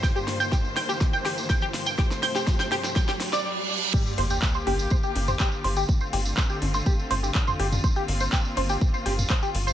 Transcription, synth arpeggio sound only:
\new Staff \with { instrumentName = "Synth arpeggio sound" } { \time 4/4 \key g \minor \tempo 4 = 123 g''16 g'16 r16 g''16 g'16 r16 g''16 g'16 r16 g''16 g'16 r16 g''16 g'16 r16 g''16 | g'16 r16 g''16 g'16 r16 g''16 g'16 r16 g''16 g'16 r16 d''16 r4 | g'16 r16 c''16 g'16 r16 c''16 g'16 r16 c''16 g'16 r16 c''16 g'16 r16 c''16 g'16 | r16 c''16 g'16 r16 c''16 g'16 r16 c''16 g'16 r16 c''16 g'16 r16 c''16 g'16 r16 |
c''16 g'16 r16 c''16 g'16 r16 c''16 g'16 r16 c''16 g'16 r16 c''16 g'16 r16 c''16 | }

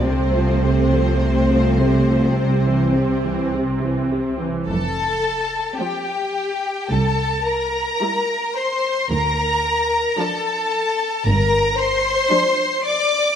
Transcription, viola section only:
\new Staff \with { instrumentName = "Viola section" } { \clef bass \time 4/4 \key f \major \tempo 4 = 54 << { a2 c'2 | r4 c'4 r4 e'4 | r4 d'4 r4 d'4 | } \\ { c16 f16 c16 f16 c16 f16 c16 f16 c16 e16 c16 e16 c16 e16 c16 e16 | r4 f8. r4 r16 g8. r16 | r4 f8. r4 r16 f8. r16 | } >> }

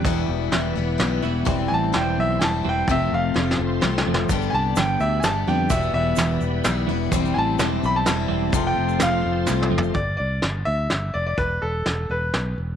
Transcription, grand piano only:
\new Staff \with { instrumentName = "Grand piano" } { \time 3/4 \key g \mixolydian \tempo 4 = 127 <b' g''>8 r2 r8 | r8 <aes'' a''>8 g''8 e''8 <aes'' a''>8 g''8 | e''8 f''4 r4. | r8 <aes'' a''>8 g''8 e''8 <aes'' a''>8 g''8 |
e''8 e''4 r4. | r8 <aes'' a''>4 b''16 a''4~ a''16~ | a''16 g''8. f''2 | d''8 d''4 e''4 d''16 d''16 |
b'8 a'4 b'4 r8 | }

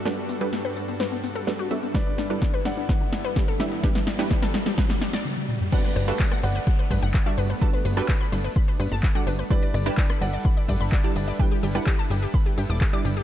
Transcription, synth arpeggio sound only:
\new Staff \with { instrumentName = "Synth arpeggio sound" } { \time 4/4 \key g \major \tempo 4 = 127 a'16 b16 b16 g'16 b16 b'16 b16 b16 b'16 b16 b16 a'16 b16 fis'16 b16 b16 | b'16 d'16 d'16 a'16 d'16 b'16 d'16 d'16 b'16 d'16 d'16 b'16 d'16 a'16 d'16 d'16 | g'16 g16 g16 fis'16 g16 a'16 g16 g16 b'16 g16 g16 d''16 r4 | fis''16 b'16 b'16 e''16 b'16 fis''16 b'16 b'16 fis''16 b'16 b'16 fis''16 b'16 e''16 b'16 b'16 |
a''16 b'16 b'16 g''16 b'16 b''16 b'16 b'16 b''16 b'16 b'16 a''16 b'16 fis''16 b'16 b'16 | b''16 d''16 d''16 a''16 d''16 b''16 d''16 d''16 b''16 d''16 d''16 b''16 d''16 a''16 d''16 d''16 | g''16 g'16 g'16 fis''16 g'16 a''16 g'16 g'16 b''16 g'16 g'16 d'''16 g'16 d'''16 g'16 g'16 | }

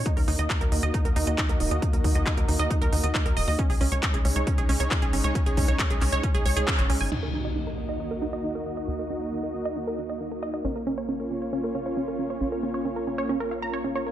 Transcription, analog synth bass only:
\new Staff \with { instrumentName = "Analog synth bass" } { \clef bass \time 4/4 \key ees \minor \tempo 4 = 136 r16 ees,16 ees,16 ees,16 r16 ees,16 ees,16 ees,16 r16 ees,16 ees,16 ees,16 r16 ees,16 ees,,16 ees,16 | r16 ees,16 ees,16 ees,16 r16 ees,16 ees,16 ees,16 r16 ees,16 ees,16 ees,16 r16 ees,16 ees,,16 ees,16 | r16 des,16 des,16 des,16 r16 des,16 des,16 des,16 r16 des,16 des,16 des,16 r16 des,16 aes,,16 des,16 | r16 des,16 des,16 des,16 r16 des,16 des,16 des,16 r16 des,16 des,16 des,16 r16 aes,,16 des,16 aes,,16 |
ees,1 | ees,1 | bes,,1 | bes,,1 | }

